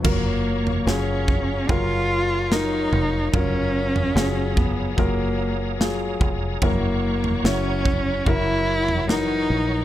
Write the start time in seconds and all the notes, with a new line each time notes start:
0.03 F#1 F#3 F4 A#4 C#5 F5 A#5 C#6, kick, floor tom, crash
0.07 A#3
0.67 floor tom
0.86 F#1 F#3 C#4 F4 G#4, snare
1.28 kick, floor tom
1.67 F#1 F#3 F4 A#4, kick, floor tom
2.50 F#3 D#4 F4 A#4, snare
2.92 F1, floor tom
3.33 F#1 F#3 C#4 F4 A#4 D#6, kick, floor tom
3.96 floor tom
4.15 F#1 F#3 F4 G#4, snare
4.57 B3, kick, floor tom
4.97 F#1 F#3 A#3 F4 A#4, kick, floor tom
5.79 F#3 F4 G#4, snare
6.21 F1, kick, floor tom
6.62 F#1 F#3 A#3 E4 A#4 F#5 C#6, kick, floor tom
7.24 floor tom
7.43 F#1 F#3 C#4 E4 C#5, snare
7.85 kick, floor tom
8.26 F#1 F#3 E4 A#4, kick, floor tom
8.88 floor tom
9.07 E3 F#3 D#4 A#4, snare
9.50 A#1